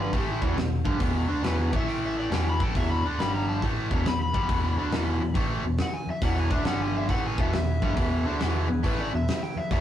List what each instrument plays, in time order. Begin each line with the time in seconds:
Already playing: overdriven electric guitar G2 D3 G3
0.02 electric slide guitar B4
0.13 picked electric bass A1, overdriven electric guitar A2 E3 A3, electric slide guitar G4, kick, open hi-hat
0.32 electric slide guitar E4
0.42 picked electric bass E1, overdriven electric guitar E2 B2 E3, kick
0.55 picked electric bass E1, overdriven electric guitar E2 B2, snare, open hi-hat
0.85 picked electric bass G1, overdriven electric guitar G2 D3 G3, kick
0.99 picked electric bass E1, overdriven electric guitar E2 B2 E3, kick, open hi-hat
1.28 picked electric bass D2, overdriven electric guitar D3 A3 D4
1.43 picked electric bass E1, overdriven electric guitar E2 B2 E3, electric slide guitar B4, snare, open hi-hat
1.72 picked electric bass A1, overdriven electric guitar A2 E3 A3, electric slide guitar E5, kick
1.89 electric slide guitar G5, open hi-hat
2.06 electric slide guitar E5
2.19 electric slide guitar D5
2.30 picked electric bass E1, overdriven electric guitar E2 B2 E3, electric slide guitar G5, snare, open hi-hat
2.49 electric slide guitar B5
2.60 picked electric bass A1, overdriven electric guitar A2 E3 A3, electric slide guitar G5, kick
2.75 picked electric bass E1, overdriven electric guitar E2 B2 E3, electric slide guitar E5, kick, open hi-hat
2.90 electric slide guitar B5
3.03 picked electric bass D2, overdriven electric guitar D3 A3 D4
3.19 picked electric bass G1, overdriven electric guitar G2 D3 G3, electric slide guitar B5, snare, open hi-hat
3.35 electric slide guitar A#5
3.49 electric slide guitar A5
3.62 picked electric bass A1, overdriven electric guitar A2 E3 A3, kick, open hi-hat
3.90 picked electric bass E1, overdriven electric guitar E2 B2 E3, kick
4.06 picked electric bass E1, overdriven electric guitar E2 B2, electric slide guitar B5, snare, open hi-hat
4.22 electric slide guitar B5
4.33 picked electric bass G1, overdriven electric guitar G2 D3 G3, kick
4.48 picked electric bass E1, overdriven electric guitar E2 B2 E3, kick, open hi-hat
4.77 picked electric bass D2, overdriven electric guitar D3 A3 D4
4.91 picked electric bass E1, overdriven electric guitar E2 B2 E3, snare, open hi-hat
5.21 picked electric bass E1, overdriven electric guitar E2 B2
5.34 picked electric bass A1, overdriven electric guitar A2 E3 A3, kick, open hi-hat
5.64 picked electric bass E1, overdriven electric guitar E2 B2
5.78 electric slide guitar F#5, snare, open hi-hat
5.94 electric slide guitar G#5
6.07 electric slide guitar E5, muted picked electric bass stroke, muted overdriven electric guitar stroke
6.22 picked electric bass E1, overdriven electric guitar E2 B2 E3, tonewheel organ B3 E4 G#4, electric slide guitar F#5, kick, open hi-hat
6.40 electric slide guitar G#5
6.50 picked electric bass D2, overdriven electric guitar D3 A3 D4, kick
6.54 electric slide guitar E5
6.62 picked electric bass G1, overdriven electric guitar G2 D3 G3, tonewheel organ G3 D4 G4, snare, open hi-hat
6.67 electric slide guitar F#5
6.82 electric slide guitar G#5
6.97 electric slide guitar E5
7.08 picked electric bass A1, overdriven electric guitar A2 E3 A3, tonewheel organ B3 E4 G#4, electric slide guitar F#5, kick, open hi-hat
7.27 electric slide guitar G#5
7.38 picked electric bass E1, overdriven electric guitar E2 B2 E3, electric slide guitar E5, kick
7.52 picked electric bass E1, overdriven electric guitar E2 B2, electric slide guitar E5, snare, open hi-hat
7.82 picked electric bass G1, overdriven electric guitar G2 D3 G3, kick
7.96 picked electric bass E1, overdriven electric guitar E2 B2 E3, kick, open hi-hat
8.25 picked electric bass D2, overdriven electric guitar D3 A3 D4
8.40 picked electric bass E1, overdriven electric guitar E2 B2 E3, snare, open hi-hat
8.68 picked electric bass E1, overdriven electric guitar E2 B2
8.83 picked electric bass A1, overdriven electric guitar A2 E3 A3, electric slide guitar B4, kick, open hi-hat
9.01 electric slide guitar D5
9.12 picked electric bass E1, overdriven electric guitar E2 B2, electric slide guitar E5
9.28 snare, open hi-hat
9.43 electric slide guitar G5
9.56 electric slide guitar E5, muted picked electric bass stroke, muted overdriven electric guitar stroke
9.71 picked electric bass E1, overdriven electric guitar E2 B2 E3, electric slide guitar E5, kick, open hi-hat